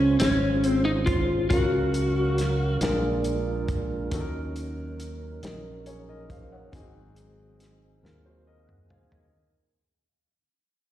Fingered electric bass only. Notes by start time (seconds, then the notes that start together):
Already playing: C#2
0.20 G#1
1.51 C#2
2.81 A#1
4.12 D#2
5.43 A#1
6.73 G#1
8.03 D#2